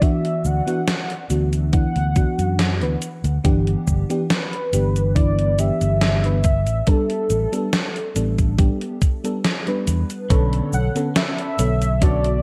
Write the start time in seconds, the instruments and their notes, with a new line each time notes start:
0.01 fm electric piano E3 B3 D4 F#4, soft synth lead E5, kick, closed hi-hat, cabasa
0.25 closed hi-hat
0.45 fingered electric bass D2, soft synth lead F#5, cabasa
0.66 fm electric piano E3 B3 D4 F#4, closed hi-hat, cabasa
0.88 snare, closed hi-hat, cabasa
1.10 closed hi-hat
1.29 fingered electric bass D2, fm electric piano E3 B3 D4 F#4, closed hi-hat, cabasa
1.53 closed hi-hat, cabasa
1.72 fm electric piano E3 B3 D4 E4, soft synth lead F#5, kick, closed hi-hat, cabasa
1.96 fingered electric bass D2, closed hi-hat
2.15 fm electric piano E3 B3 D4 F#4, kick, closed hi-hat, cabasa
2.38 fingered electric bass F#2, closed hi-hat, cabasa
2.59 snare, closed hi-hat, cabasa
2.81 fingered electric bass D2, fm electric piano E3 B3 D4 B4, closed hi-hat
3.02 closed hi-hat, cabasa
3.24 fingered electric bass D2, closed hi-hat, cabasa
3.44 fingered electric bass G1, fm electric piano E3 B3 D4 G4, kick, closed hi-hat, cabasa
3.67 closed hi-hat
3.87 fingered electric bass G1, kick, cabasa
4.09 fm electric piano E3 B3 D4 G4, closed hi-hat, cabasa
4.30 soft synth lead B4, snare, closed hi-hat, cabasa
4.53 closed hi-hat
4.72 fingered electric bass G1, fm electric piano E3 B3 D4 G4, closed hi-hat, cabasa
4.96 closed hi-hat, cabasa
5.15 fm electric piano E3 B3 D4 E4, soft synth lead D5, kick, closed hi-hat, cabasa
5.39 closed hi-hat
5.58 fm electric piano E3 B3 D4 G4, soft synth lead E5, closed hi-hat, cabasa
5.81 fingered electric bass G1, closed hi-hat, cabasa
6.01 snare, closed hi-hat, cabasa
6.24 fm electric piano E3 B3 D4 B4, closed hi-hat
6.44 soft synth lead E5, kick, closed hi-hat, cabasa
6.67 fingered electric bass A1, closed hi-hat, cabasa
6.87 fm electric piano G3 B3 D4 A4, soft synth lead A4, kick, closed hi-hat, cabasa
7.10 closed hi-hat
7.30 fingered electric bass A1, closed hi-hat, cabasa
7.52 fm electric piano G3 B3 D4 A4, closed hi-hat, cabasa
7.73 snare, closed hi-hat, cabasa
7.96 closed hi-hat
8.15 fingered electric bass A1, fm electric piano G3 B3 D4 A4, closed hi-hat, cabasa
8.38 kick, closed hi-hat, cabasa
8.58 fm electric piano G3 B3 D4 G4, kick, closed hi-hat, cabasa
8.81 closed hi-hat
9.02 kick, closed hi-hat, cabasa
9.24 fm electric piano G3 B3 D4 A4, closed hi-hat, cabasa
9.45 snare, closed hi-hat, cabasa
9.67 fm electric piano G3 B3 D4 B4, closed hi-hat
9.87 fingered electric bass E2, closed hi-hat, cabasa
10.10 closed hi-hat, cabasa
10.30 fingered electric bass B1, fm electric piano D3 B3 A4 C#5, clean electric guitar C#4 D4 A4 B4, kick, closed hi-hat, cabasa
10.53 closed hi-hat
10.73 fingered electric bass B1, soft synth lead F#5, cabasa
10.95 fm electric piano D3 B3 C#4 A4, closed hi-hat, cabasa
11.15 clean electric guitar C#4 D4 A4 B4, soft synth lead E5, snare, closed hi-hat, cabasa
11.39 closed hi-hat
11.58 fingered electric bass B1, fm electric piano D3 B3 A4 C#5, closed hi-hat, cabasa
11.82 closed hi-hat, cabasa
12.01 fm electric piano D3 B3 F#4 D5, clean electric guitar C#4 D4 A4 C#5, soft synth lead D5, kick, closed hi-hat, cabasa
12.24 closed hi-hat